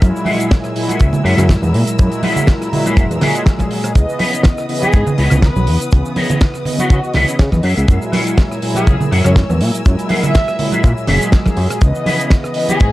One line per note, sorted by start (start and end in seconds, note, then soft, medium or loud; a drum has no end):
0.00 0.12 F#2 loud
0.00 0.72 A#2 loud
0.00 0.73 F#3 medium
0.00 0.73 G#3 medium
0.00 0.73 E4 loud
0.00 0.17 F#4 medium
0.00 0.17 G#4 medium
0.00 0.17 A#4 medium
0.00 3.91 A#4 medium
0.00 0.18 E5 loud
0.00 1.72 G#5 medium
0.00 3.91 E6 medium
0.00 kick loud
0.00 closed hi-hat loud
0.00 cabasa medium
0.16 cabasa medium
0.25 0.50 F#4 loud
0.25 0.51 G#4 loud
0.25 0.51 A#4 loud
0.25 0.51 E5 loud
0.25 open hi-hat loud
0.25 high conga medium
0.40 closed hi-hat medium
0.40 cabasa medium
0.51 kick loud
0.51 snare loud
0.51 closed hi-hat medium
0.51 cabasa medium
0.64 cross-stick medium
0.64 cabasa soft
0.75 1.22 A#2 loud
0.75 1.22 F#3 medium
0.75 1.22 G#3 medium
0.75 1.22 E4 loud
0.75 muted clean electric guitar stroke soft
0.75 open hi-hat loud
0.88 1.06 F#4 medium
0.88 1.07 G#4 medium
0.88 1.07 A#4 medium
0.88 1.07 E5 loud
0.88 closed hi-hat medium
0.88 high conga medium
0.88 cabasa medium
1.00 1.11 C#2 medium
1.00 kick loud
1.00 closed hi-hat medium
1.00 cabasa medium
1.13 low conga medium
1.13 cabasa medium
1.23 1.35 F#2 medium
1.23 1.95 A#2 medium
1.23 1.96 F#3 medium
1.23 1.96 G#3 medium
1.23 1.96 E4 medium
1.23 1.43 F#4 loud
1.23 1.43 G#4 loud
1.23 1.44 A#4 loud
1.23 1.44 E5 loud
1.23 open hi-hat loud
1.38 1.57 F#2 loud
1.38 cross-stick medium
1.38 closed hi-hat medium
1.38 low conga medium
1.38 cabasa medium
1.49 kick loud
1.49 snare loud
1.49 closed hi-hat medium
1.49 cabasa medium
1.62 1.75 E2 medium
1.62 muted clean electric guitar stroke medium
1.62 high conga medium
1.62 cabasa soft
1.73 1.84 A#2 medium
1.73 3.93 A#5 medium
1.73 muted clean electric guitar stroke soft
1.73 open hi-hat loud
1.87 muted clean electric guitar stroke soft
1.87 closed hi-hat medium
1.87 cabasa medium
1.97 2.10 F#2 loud
1.97 2.69 A#2 loud
1.97 2.69 F#3 medium
1.97 2.69 G#3 medium
1.97 2.70 E4 loud
1.97 kick loud
1.97 closed hi-hat medium
1.97 cabasa medium
2.12 closed hi-hat medium
2.12 cabasa medium
2.22 2.47 F#4 loud
2.22 2.48 G#4 loud
2.22 2.48 A#4 loud
2.22 2.48 E5 loud
2.22 open hi-hat loud
2.22 high conga medium
2.36 closed hi-hat medium
2.36 low conga medium
2.36 cabasa medium
2.47 kick loud
2.47 snare loud
2.47 closed hi-hat loud
2.47 cabasa medium
2.62 cross-stick medium
2.62 closed hi-hat medium
2.62 cabasa medium
2.71 3.18 A#2 loud
2.71 3.19 F#3 medium
2.71 3.19 G#3 medium
2.71 3.19 E4 loud
2.71 muted clean electric guitar stroke soft
2.71 open hi-hat loud
2.71 low conga medium
2.85 3.03 F#4 medium
2.85 3.03 G#4 medium
2.85 3.04 A#4 medium
2.85 3.04 E5 loud
2.85 closed hi-hat medium
2.85 high conga medium
2.85 cabasa medium
2.97 3.08 F#1 loud
2.97 kick loud
2.97 closed hi-hat medium
2.97 cabasa medium
3.10 3.19 E2 medium
3.10 closed hi-hat medium
3.10 cabasa medium
3.20 3.92 A#2 loud
3.20 3.92 F#3 medium
3.20 3.93 G#3 medium
3.20 3.40 F#4 loud
3.20 3.40 G#4 loud
3.20 3.93 G#4 loud
3.20 3.41 A#4 loud
3.20 3.41 E5 loud
3.20 snare medium
3.20 open hi-hat loud
3.20 low conga medium
3.35 closed hi-hat medium
3.35 cabasa medium
3.46 kick loud
3.46 snare loud
3.46 closed hi-hat medium
3.46 cabasa medium
3.58 muted clean electric guitar stroke medium
3.58 kick medium
3.58 cross-stick medium
3.58 closed hi-hat medium
3.58 high conga medium
3.58 cabasa soft
3.70 muted clean electric guitar stroke soft
3.70 open hi-hat loud
3.83 muted clean electric guitar stroke soft
3.83 cross-stick medium
3.83 closed hi-hat medium
3.83 cabasa medium
3.94 4.06 C#2 loud
3.94 4.66 C#3 medium
3.94 4.66 E3 medium
3.94 4.66 B3 medium
3.94 7.61 B4 medium
3.94 4.67 D#5 loud
3.94 7.60 D#6 medium
3.94 kick loud
3.94 closed hi-hat medium
3.94 cabasa medium
4.09 cabasa medium
4.18 4.44 E4 loud
4.18 4.44 B4 loud
4.18 4.44 C#5 loud
4.18 4.45 D#5 loud
4.18 open hi-hat loud
4.18 high conga medium
4.33 closed hi-hat medium
4.33 cabasa medium
4.43 kick loud
4.43 snare loud
4.43 closed hi-hat medium
4.43 cabasa medium
4.58 cross-stick medium
4.58 cabasa medium
4.68 5.15 C#3 loud
4.68 5.15 E3 medium
4.68 5.16 B3 medium
4.68 5.16 D#5 loud
4.68 muted clean electric guitar stroke soft
4.68 open hi-hat loud
4.81 5.00 E4 medium
4.81 5.00 G#4 loud
4.81 5.00 B4 medium
4.81 5.00 C#5 medium
4.81 5.01 D#5 loud
4.81 closed hi-hat medium
4.81 high conga medium
4.81 cabasa medium
4.93 5.04 G#2 medium
4.93 kick loud
4.93 closed hi-hat medium
4.93 cabasa medium
5.07 low conga loud
5.07 cabasa medium
5.18 5.29 C#2 medium
5.18 5.89 C#3 medium
5.18 5.89 E3 medium
5.18 5.90 B3 medium
5.18 5.37 E4 loud
5.18 5.37 B4 loud
5.18 5.37 C#5 loud
5.18 5.38 D#5 loud
5.18 open hi-hat loud
5.30 5.51 C#2 loud
5.30 cross-stick medium
5.30 closed hi-hat medium
5.30 low conga loud
5.30 cabasa medium
5.42 5.92 B4 loud
5.42 kick loud
5.42 snare loud
5.42 closed hi-hat medium
5.42 cabasa medium
5.55 5.69 B1 medium
5.55 muted clean electric guitar stroke medium
5.55 high conga loud
5.55 cabasa medium
5.67 5.78 E2 medium
5.67 muted clean electric guitar stroke soft
5.67 open hi-hat loud
5.80 muted clean electric guitar stroke soft
5.80 closed hi-hat medium
5.80 cabasa medium
5.91 6.03 C#2 loud
5.91 6.63 C#3 medium
5.91 6.63 E3 medium
5.91 6.63 B3 medium
5.91 kick loud
5.91 closed hi-hat medium
5.91 cabasa medium
6.05 cabasa soft
6.16 6.41 E4 loud
6.16 6.41 B4 loud
6.16 6.41 C#5 medium
6.16 6.42 D#5 loud
6.16 open hi-hat loud
6.16 high conga medium
6.29 closed hi-hat medium
6.29 low conga loud
6.29 cabasa medium
6.41 kick loud
6.41 snare loud
6.41 closed hi-hat loud
6.41 cabasa medium
6.54 cross-stick medium
6.54 cabasa soft
6.65 7.12 C#3 loud
6.65 7.12 E3 medium
6.65 7.12 B3 medium
6.65 7.12 D#5 loud
6.65 muted clean electric guitar stroke soft
6.65 open hi-hat loud
6.65 low conga medium
6.79 6.97 E4 medium
6.79 6.86 F#4 medium
6.79 6.97 B4 medium
6.79 6.97 C#5 medium
6.79 6.98 D#5 loud
6.79 closed hi-hat medium
6.79 high conga medium
6.79 cabasa medium
6.90 7.01 C#3 medium
6.90 6.99 F#4 medium
6.90 kick loud
6.90 closed hi-hat medium
6.90 cabasa medium
7.04 cabasa soft
7.14 7.25 C#2 medium
7.14 7.62 C#3 medium
7.14 7.63 E3 medium
7.14 7.63 B3 medium
7.14 7.34 E4 loud
7.14 7.34 B4 loud
7.14 7.34 C#5 loud
7.14 7.63 D#5 medium
7.14 7.35 D#5 loud
7.14 snare medium
7.14 open hi-hat loud
7.14 low conga medium
7.28 7.37 C#3 soft
7.28 closed hi-hat medium
7.28 cabasa medium
7.39 7.50 C#3 medium
7.39 kick loud
7.39 snare loud
7.39 closed hi-hat medium
7.39 cabasa medium
7.52 7.61 E2 medium
7.52 muted clean electric guitar stroke medium
7.52 kick medium
7.52 cross-stick medium
7.52 high conga medium
7.52 cabasa soft
7.63 7.75 F#2 medium
7.63 8.04 F#4 medium
7.63 8.04 G#4 medium
7.63 8.04 A#4 medium
7.63 11.78 A#4 medium
7.63 8.05 E5 loud
7.63 11.78 G#5 medium
7.63 11.78 E6 medium
7.63 open hi-hat loud
7.77 7.86 C#2 medium
7.77 closed hi-hat medium
7.77 cabasa medium
7.87 7.99 F#2 loud
7.87 8.59 A#2 medium
7.87 8.59 F#3 medium
7.87 8.60 G#3 medium
7.87 8.60 E4 loud
7.87 kick loud
7.87 closed hi-hat medium
7.87 cabasa medium
8.02 cabasa medium
8.12 8.37 F#4 loud
8.12 8.38 G#4 loud
8.12 8.38 A#4 loud
8.12 8.38 E5 loud
8.12 open hi-hat loud
8.12 high conga loud
8.27 closed hi-hat medium
8.27 cabasa medium
8.38 kick loud
8.38 snare loud
8.38 closed hi-hat medium
8.38 cabasa medium
8.52 cross-stick medium
8.52 cabasa soft
8.62 9.09 A#2 medium
8.62 9.09 F#3 medium
8.62 9.09 G#3 medium
8.62 9.09 E4 loud
8.62 muted clean electric guitar stroke soft
8.62 open hi-hat loud
8.75 8.93 F#4 medium
8.75 8.94 G#4 loud
8.75 8.94 G#4 medium
8.75 8.94 A#4 medium
8.75 8.94 E5 loud
8.75 closed hi-hat medium
8.75 high conga medium
8.75 cabasa medium
8.87 8.98 C#2 medium
8.87 kick loud
8.87 closed hi-hat medium
8.87 cabasa medium
9.01 low conga medium
9.01 cabasa soft
9.10 9.22 F#2 medium
9.10 9.82 A#2 medium
9.10 9.83 F#3 medium
9.10 9.83 G#3 medium
9.10 9.83 E4 medium
9.10 9.30 F#4 loud
9.10 9.31 G#4 loud
9.10 9.31 A#4 loud
9.10 9.31 E5 loud
9.10 open hi-hat loud
9.25 9.44 F#2 loud
9.25 9.32 C#5 medium
9.25 cross-stick medium
9.25 closed hi-hat medium
9.25 low conga medium
9.25 cabasa medium
9.36 9.45 C#5 medium
9.36 kick loud
9.36 snare loud
9.36 closed hi-hat medium
9.36 cabasa medium
9.49 9.62 E2 medium
9.49 muted clean electric guitar stroke medium
9.49 high conga loud
9.49 cabasa medium
9.60 9.72 A#2 medium
9.60 muted clean electric guitar stroke soft
9.60 open hi-hat loud
9.73 muted clean electric guitar stroke soft
9.73 closed hi-hat medium
9.73 cabasa medium
9.84 9.96 F#2 loud
9.84 10.56 A#2 loud
9.84 10.56 F#3 medium
9.84 10.57 G#3 medium
9.84 10.57 E4 loud
9.84 kick loud
9.84 closed hi-hat medium
9.84 cabasa medium
9.99 closed hi-hat medium
9.99 cabasa medium
10.08 10.34 F#4 loud
10.08 10.34 G#4 loud
10.08 10.34 A#4 loud
10.08 10.35 E5 loud
10.08 open hi-hat loud
10.08 high conga medium
10.23 10.73 E5 medium
10.23 closed hi-hat medium
10.23 low conga medium
10.23 cabasa medium
10.35 kick loud
10.35 snare loud
10.35 closed hi-hat medium
10.35 cabasa medium
10.48 cross-stick medium
10.48 cabasa soft
10.58 11.05 A#2 medium
10.58 11.05 F#3 medium
10.58 11.05 G#3 medium
10.58 11.06 E4 loud
10.58 muted clean electric guitar stroke soft
10.58 open hi-hat loud
10.58 low conga medium
10.71 10.90 F#4 medium
10.71 10.90 G#4 medium
10.71 10.90 A#4 medium
10.71 10.91 E5 medium
10.71 closed hi-hat medium
10.71 high conga medium
10.71 cabasa medium
10.84 10.94 A#2 medium
10.84 kick loud
10.84 closed hi-hat medium
10.84 cabasa medium
10.97 cabasa soft
11.07 11.19 F#1 loud
11.07 11.79 A#2 medium
11.07 11.79 F#3 medium
11.07 11.79 G#3 medium
11.07 11.27 F#4 loud
11.07 11.27 G#4 loud
11.07 11.80 G#4 loud
11.07 11.27 A#4 loud
11.07 11.28 E5 loud
11.07 snare medium
11.07 open hi-hat loud
11.07 low conga medium
11.21 closed hi-hat medium
11.21 cabasa medium
11.32 kick loud
11.32 snare loud
11.32 closed hi-hat medium
11.32 cabasa medium
11.46 muted clean electric guitar stroke medium
11.46 kick medium
11.46 cross-stick medium
11.46 high conga medium
11.46 cabasa soft
11.57 11.68 F#2 medium
11.57 muted clean electric guitar stroke soft
11.57 open hi-hat loud
11.70 muted clean electric guitar stroke soft
11.70 cross-stick medium
11.70 closed hi-hat medium
11.70 cabasa medium
11.81 11.92 C#2 loud
11.81 12.53 C#3 medium
11.81 12.53 E3 medium
11.81 12.53 B3 medium
11.81 12.92 B4 medium
11.81 12.54 D#5 loud
11.81 12.92 D#6 medium
11.81 kick loud
11.81 closed hi-hat medium
11.81 cabasa medium
11.95 cabasa medium
12.05 12.31 E4 loud
12.05 12.31 B4 loud
12.05 12.31 C#5 medium
12.05 12.31 D#5 loud
12.05 open hi-hat loud
12.05 high conga medium
12.20 closed hi-hat medium
12.20 cabasa medium
12.30 kick loud
12.30 snare loud
12.30 closed hi-hat medium
12.30 cabasa medium
12.44 cross-stick medium
12.44 cabasa soft
12.54 12.92 C#3 loud
12.54 12.92 E3 medium
12.54 12.92 B3 medium
12.54 12.92 D#5 loud
12.54 muted clean electric guitar stroke soft
12.54 open hi-hat loud
12.68 12.87 E4 medium
12.68 12.87 G#4 loud
12.68 12.87 B4 medium
12.68 12.87 C#5 medium
12.68 12.87 D#5 loud
12.68 closed hi-hat medium
12.68 high conga medium
12.68 cabasa medium
12.80 12.91 G#2 medium
12.80 kick loud
12.80 closed hi-hat medium
12.80 cabasa medium